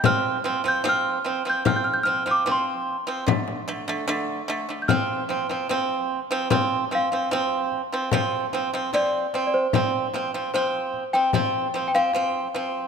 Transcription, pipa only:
X:1
M:4/4
L:1/16
Q:1/4=74
K:none
V:1 name="Pipa" clef=bass
[F,C]2 [F,C] [F,C] [F,C]2 [F,C] [F,C] [F,C]2 [F,C] [F,C] [F,C]2 z [F,C] | [D,A,]2 [D,A,] [D,A,] [D,A,]2 [D,A,] [D,A,] [F,C]2 [F,C] [F,C] [F,C]2 z [F,C] | [F,C]2 [F,C] [F,C] [F,C]2 z [F,C] [F,C]2 [F,C] [F,C] [F,C]2 [F,C]2 | [F,C]2 [F,C] [F,C] [F,C]2 z [F,C] [F,C]2 [F,C] [F,C] [F,C]2 [F,C]2 |]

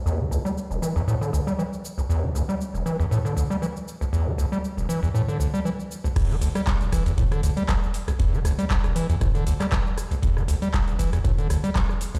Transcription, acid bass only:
X:1
M:4/4
L:1/16
Q:"Swing 16ths" 1/4=118
K:Em
V:1 name="Acid bass" clef=bass
E,, E, D,, G, z E,,, E, E,, A,, D, D,, G, E, z2 D,, | E,, E, D,, G, z E,,, E, E,, A,, D, D,, G, E, z2 D,, | E,, E, D,, G, z E,,, E, E,, A,, D, D,, G, E, z2 D,, | E,, E, D,, G, z E,,, E, E,, A,, D, D,, G, E, z2 D,, |
E,, E, D,, G, z E,,, E, E,, A,, D, D,, G, E, z2 D,, | E,, E, D,, G, z E,,, E, E,, A,, D, D,, G, E, z2 D,, |]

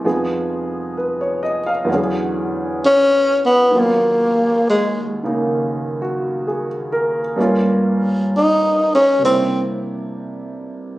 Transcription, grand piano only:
X:1
M:4/4
L:1/16
Q:"Swing" 1/4=66
K:Ebm
V:1 name="Grand piano"
z4 c d e f z8 | z8 z2 G2 A2 B2- | B z12 z3 |]
V:2 name="Grand piano" clef=bass
[F,,F,CEA]8 [=E,,=D,=E,^F,^C^G]8 | [E,,E,G,DF]6 [D,E,B,E]8- [D,E,B,E]2 | [=G,,=G,B,DF]8 [=C,G,B,=D=E]8 |]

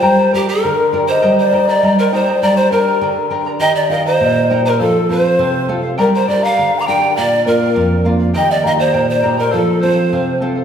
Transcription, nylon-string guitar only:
X:1
M:2/4
L:1/8
Q:1/4=101
K:Eblyd
V:1 name="Nylon-string guitar"
G, [DGB] D, [DGB] | G, [EGB] G, [EGB] | G, [DGB] D, [DGB] | E, [EGB] B,, [EGB] |
F, [CFA] C, [CFA] | G, [DGB] D, [DGB] | B,, [B,DF] F,, [B,DF] | E, [B,EG] B,, [B,EG] |
F, [CFA] C, [CFA] |]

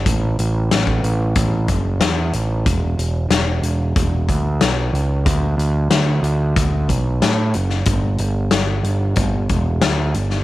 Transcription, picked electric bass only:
X:1
M:4/4
L:1/8
Q:1/4=92
K:Dlyd
V:1 name="Picked electric bass" clef=bass
A,,, A,,, A,,, A,,, A,,, F,,, E,, A,,, | E,,, E,,, E,,, E,,, E,,, D,, B,,, C,, | D,, D,, D,, D,, D,, B,,, A,, F,,, | =G,,, G,,, G,,, G,,, G,,, E,,, D,, G,,, |]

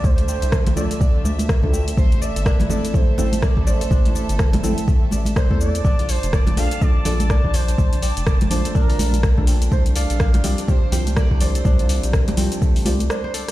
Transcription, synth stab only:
X:1
M:4/4
L:1/16
Q:"Swing 16ths" 1/4=124
K:Aphr
V:1 name="Synth stab"
z6 [A,DFA]6- [A,DFA] [A,DFA]3 | z6 [A,CEA]2 [A,CEA] z [A,CEA] z4 z | z6 [A,CEA]6- [A,CEA] [A,CEA]3 | z6 [B,DFA]2 [B,DFA] z [B,DFA] z4 z |
z6 [B,DFa]6- [B,DFa] [B,DFA]3 | z6 [G,CFG]2 [G,CFG] z [G,CFG] z4 z | z6 [G,CFG]4 [G,CFG] z4 z |]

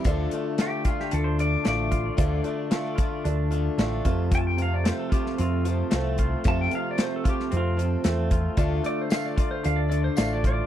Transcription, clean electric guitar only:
X:1
M:4/4
L:1/8
Q:1/4=112
K:Dm
V:1 name="Clean electric guitar"
D, A, A, F D D, A, F | D, A, A, F D D, A, F,, | F,, C, A, F C F, A, F | F,, C, A, F C F, A, F |
D, A, A, F D D, A, F |]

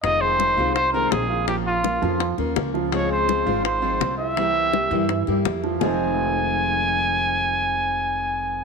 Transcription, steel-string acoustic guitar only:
X:1
M:4/4
L:1/8
Q:1/4=166
K:Fm
V:1 name="Steel-string acoustic guitar"
[C,E,A,CF]3 [E,A,CF] z [E,A,CF] [E,A,CF]2 | [F,B,DF]3 [B,DF] z [B,DF] [F,B,DF]2 | [D,F,A,CF]3 [F,A,CF] z [F,A,CF] [F,A,CF]2 | [C,G,B,=EG]3 [G,B,EG] z [G,B,EG] [G,B,EG]2 |
[F,,C,E,A,CF]8- | [F,,C,E,A,CF]8 |]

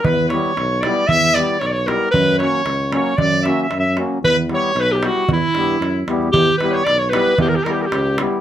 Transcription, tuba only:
X:1
M:2/4
L:1/8
Q:"Swing 16ths" 1/4=114
K:none
V:1 name="Tuba" clef=bass
E,,2 B,,,2 | E,,2 B,,,2 | ^F,,2 ^C,,2 | ^F,,2 F,,2 |
E,,2 B,,,2 | E,, G,, ^F,, E,, | E,, z B,,,2 | E,, z ^C,,2 |]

